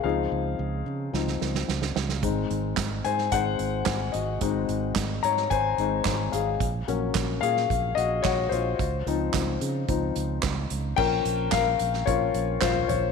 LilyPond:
<<
  \new Staff \with { instrumentName = "Grand piano" } { \time 4/4 \key des \major \tempo 4 = 110 << { <aes' f''>2 r2 | r4. <c'' aes''>8 <c'' ges''>4. <ges' ees''>8 | r4. <des'' bes''>8 <c'' aes''>4. <aes' f''>8 | r4. <aes' f''>4 <ges' ees''>8 <ges' des''>8 <f' c''>8~ |
<f' c''>2. r4 | \key bes \dorian <bes' g''>4 <bes' f''>4 <f' des''>4 <f' c''>8 <f' des''>8 | } \\ { <f c' ees'>4. r8 <f c' ees'>8 r4. | <aes c' ees'>4. r8 <aes c' ees'>8 r4. | <aes c' ees'>4. r4 <aes c' ees'>8 r4 | r8 <ges bes des'>8 r2. |
r8 <f c' ees'>8 r4 <f c' ees'>8 r4. | <f bes des'>4. r8 <f bes des'>8 r4. | } >> }
  \new Staff \with { instrumentName = "Fingered electric bass" } { \clef bass \time 4/4 \key des \major des,8 des,8 des,8 des8 des,8 des,8 des,8 des,8 | aes,,8 aes,,8 aes,,8 aes,8 aes,,8 aes,,8 aes,,8 aes,,8 | aes,,8 aes,,8 aes,,8 aes,8 aes,,8 aes,,8 aes,,8 aes,,8 | bes,,8 bes,,8 bes,,8 bes,8 bes,,8 bes,,8 bes,,8 bes,,8 |
des,8 des,8 des,8 des8 des,8 des,8 des,8 des,8 | \key bes \dorian bes,,8 bes,,8 bes,,8 bes,,8 bes,,8 bes,,8 bes,,8 bes,,8 | }
  \new DrumStaff \with { instrumentName = "Drums" } \drummode { \time 4/4 r4 r4 sn16 sn16 sn16 sn16 sn16 sn16 sn16 sn16 | <hh bd>8 hh8 <hc hh bd sn>8 hh16 sn16 <hh bd>8 hh8 <hc hh bd sn>8 hh8 | <hh bd>8 hh8 <hc hh bd sn>8 hh16 sn16 <hh bd>8 hh8 <hc hh bd sn>8 hh8 | <hh bd>8 hh8 <hc hh bd sn>8 hh16 sn16 <hh bd>8 hh8 <hc hh bd sn>8 hh8 |
<hh bd>8 hh8 <hc hh bd sn>8 hh8 <hh bd>8 hh8 <hc hh bd sn>8 hh8 | <cymc bd>8 hh8 <hc hh bd sn>8 hh16 sn16 <hh bd>8 hh8 <hc hh bd sn>16 tomfh16 <hh tomfh>8 | }
>>